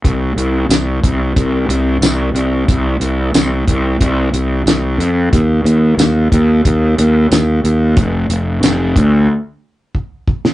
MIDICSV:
0, 0, Header, 1, 3, 480
1, 0, Start_track
1, 0, Tempo, 659341
1, 33, Time_signature, 4, 2, 24, 8
1, 7672, End_track
2, 0, Start_track
2, 0, Title_t, "Fingered electric bass"
2, 0, Program_c, 0, 33
2, 32, Note_on_c, 0, 36, 82
2, 256, Note_off_c, 0, 36, 0
2, 264, Note_on_c, 0, 36, 71
2, 492, Note_off_c, 0, 36, 0
2, 503, Note_on_c, 0, 36, 73
2, 731, Note_off_c, 0, 36, 0
2, 753, Note_on_c, 0, 36, 80
2, 977, Note_off_c, 0, 36, 0
2, 992, Note_on_c, 0, 36, 85
2, 1216, Note_off_c, 0, 36, 0
2, 1226, Note_on_c, 0, 36, 86
2, 1453, Note_off_c, 0, 36, 0
2, 1461, Note_on_c, 0, 36, 75
2, 1690, Note_off_c, 0, 36, 0
2, 1700, Note_on_c, 0, 36, 73
2, 1929, Note_off_c, 0, 36, 0
2, 1954, Note_on_c, 0, 36, 85
2, 2177, Note_off_c, 0, 36, 0
2, 2184, Note_on_c, 0, 36, 74
2, 2412, Note_off_c, 0, 36, 0
2, 2435, Note_on_c, 0, 36, 87
2, 2658, Note_off_c, 0, 36, 0
2, 2678, Note_on_c, 0, 36, 80
2, 2899, Note_off_c, 0, 36, 0
2, 2917, Note_on_c, 0, 36, 86
2, 3139, Note_off_c, 0, 36, 0
2, 3153, Note_on_c, 0, 36, 84
2, 3377, Note_off_c, 0, 36, 0
2, 3390, Note_on_c, 0, 36, 82
2, 3615, Note_off_c, 0, 36, 0
2, 3627, Note_on_c, 0, 41, 81
2, 3854, Note_off_c, 0, 41, 0
2, 3879, Note_on_c, 0, 39, 86
2, 4100, Note_off_c, 0, 39, 0
2, 4108, Note_on_c, 0, 39, 74
2, 4334, Note_off_c, 0, 39, 0
2, 4348, Note_on_c, 0, 39, 81
2, 4574, Note_off_c, 0, 39, 0
2, 4599, Note_on_c, 0, 39, 84
2, 4820, Note_off_c, 0, 39, 0
2, 4842, Note_on_c, 0, 39, 90
2, 5062, Note_off_c, 0, 39, 0
2, 5084, Note_on_c, 0, 39, 95
2, 5303, Note_off_c, 0, 39, 0
2, 5319, Note_on_c, 0, 39, 81
2, 5541, Note_off_c, 0, 39, 0
2, 5561, Note_on_c, 0, 39, 80
2, 5782, Note_off_c, 0, 39, 0
2, 5800, Note_on_c, 0, 29, 91
2, 6021, Note_off_c, 0, 29, 0
2, 6039, Note_on_c, 0, 29, 87
2, 6261, Note_off_c, 0, 29, 0
2, 6280, Note_on_c, 0, 29, 86
2, 6501, Note_off_c, 0, 29, 0
2, 6524, Note_on_c, 0, 38, 84
2, 6743, Note_off_c, 0, 38, 0
2, 7672, End_track
3, 0, Start_track
3, 0, Title_t, "Drums"
3, 34, Note_on_c, 9, 36, 82
3, 37, Note_on_c, 9, 42, 64
3, 107, Note_off_c, 9, 36, 0
3, 110, Note_off_c, 9, 42, 0
3, 276, Note_on_c, 9, 42, 53
3, 349, Note_off_c, 9, 42, 0
3, 513, Note_on_c, 9, 42, 81
3, 513, Note_on_c, 9, 54, 92
3, 520, Note_on_c, 9, 38, 90
3, 586, Note_off_c, 9, 42, 0
3, 586, Note_off_c, 9, 54, 0
3, 592, Note_off_c, 9, 38, 0
3, 754, Note_on_c, 9, 36, 77
3, 757, Note_on_c, 9, 42, 65
3, 826, Note_off_c, 9, 36, 0
3, 830, Note_off_c, 9, 42, 0
3, 993, Note_on_c, 9, 36, 71
3, 994, Note_on_c, 9, 42, 65
3, 1066, Note_off_c, 9, 36, 0
3, 1066, Note_off_c, 9, 42, 0
3, 1237, Note_on_c, 9, 42, 59
3, 1310, Note_off_c, 9, 42, 0
3, 1473, Note_on_c, 9, 42, 76
3, 1473, Note_on_c, 9, 54, 103
3, 1479, Note_on_c, 9, 38, 85
3, 1545, Note_off_c, 9, 42, 0
3, 1545, Note_off_c, 9, 54, 0
3, 1552, Note_off_c, 9, 38, 0
3, 1715, Note_on_c, 9, 42, 55
3, 1788, Note_off_c, 9, 42, 0
3, 1954, Note_on_c, 9, 36, 90
3, 1956, Note_on_c, 9, 42, 68
3, 2027, Note_off_c, 9, 36, 0
3, 2028, Note_off_c, 9, 42, 0
3, 2191, Note_on_c, 9, 42, 54
3, 2264, Note_off_c, 9, 42, 0
3, 2434, Note_on_c, 9, 42, 70
3, 2434, Note_on_c, 9, 54, 98
3, 2441, Note_on_c, 9, 38, 103
3, 2507, Note_off_c, 9, 42, 0
3, 2507, Note_off_c, 9, 54, 0
3, 2513, Note_off_c, 9, 38, 0
3, 2676, Note_on_c, 9, 36, 76
3, 2677, Note_on_c, 9, 42, 62
3, 2748, Note_off_c, 9, 36, 0
3, 2750, Note_off_c, 9, 42, 0
3, 2916, Note_on_c, 9, 36, 71
3, 2918, Note_on_c, 9, 42, 65
3, 2989, Note_off_c, 9, 36, 0
3, 2990, Note_off_c, 9, 42, 0
3, 3158, Note_on_c, 9, 42, 58
3, 3231, Note_off_c, 9, 42, 0
3, 3400, Note_on_c, 9, 42, 71
3, 3400, Note_on_c, 9, 54, 81
3, 3406, Note_on_c, 9, 38, 94
3, 3473, Note_off_c, 9, 42, 0
3, 3473, Note_off_c, 9, 54, 0
3, 3479, Note_off_c, 9, 38, 0
3, 3643, Note_on_c, 9, 42, 53
3, 3716, Note_off_c, 9, 42, 0
3, 3879, Note_on_c, 9, 36, 87
3, 3881, Note_on_c, 9, 42, 68
3, 3952, Note_off_c, 9, 36, 0
3, 3953, Note_off_c, 9, 42, 0
3, 4122, Note_on_c, 9, 42, 52
3, 4195, Note_off_c, 9, 42, 0
3, 4360, Note_on_c, 9, 42, 74
3, 4360, Note_on_c, 9, 54, 103
3, 4367, Note_on_c, 9, 38, 88
3, 4433, Note_off_c, 9, 42, 0
3, 4433, Note_off_c, 9, 54, 0
3, 4440, Note_off_c, 9, 38, 0
3, 4601, Note_on_c, 9, 36, 79
3, 4604, Note_on_c, 9, 42, 63
3, 4673, Note_off_c, 9, 36, 0
3, 4677, Note_off_c, 9, 42, 0
3, 4842, Note_on_c, 9, 36, 71
3, 4844, Note_on_c, 9, 42, 83
3, 4915, Note_off_c, 9, 36, 0
3, 4917, Note_off_c, 9, 42, 0
3, 5085, Note_on_c, 9, 42, 65
3, 5158, Note_off_c, 9, 42, 0
3, 5326, Note_on_c, 9, 42, 80
3, 5326, Note_on_c, 9, 54, 89
3, 5333, Note_on_c, 9, 38, 89
3, 5399, Note_off_c, 9, 42, 0
3, 5399, Note_off_c, 9, 54, 0
3, 5406, Note_off_c, 9, 38, 0
3, 5567, Note_on_c, 9, 42, 59
3, 5640, Note_off_c, 9, 42, 0
3, 5800, Note_on_c, 9, 42, 66
3, 5802, Note_on_c, 9, 36, 99
3, 5873, Note_off_c, 9, 42, 0
3, 5875, Note_off_c, 9, 36, 0
3, 6042, Note_on_c, 9, 42, 60
3, 6115, Note_off_c, 9, 42, 0
3, 6282, Note_on_c, 9, 42, 81
3, 6282, Note_on_c, 9, 54, 107
3, 6288, Note_on_c, 9, 38, 97
3, 6354, Note_off_c, 9, 42, 0
3, 6354, Note_off_c, 9, 54, 0
3, 6361, Note_off_c, 9, 38, 0
3, 6522, Note_on_c, 9, 36, 81
3, 6526, Note_on_c, 9, 42, 59
3, 6594, Note_off_c, 9, 36, 0
3, 6598, Note_off_c, 9, 42, 0
3, 7241, Note_on_c, 9, 36, 47
3, 7314, Note_off_c, 9, 36, 0
3, 7480, Note_on_c, 9, 36, 68
3, 7553, Note_off_c, 9, 36, 0
3, 7607, Note_on_c, 9, 38, 69
3, 7672, Note_off_c, 9, 38, 0
3, 7672, End_track
0, 0, End_of_file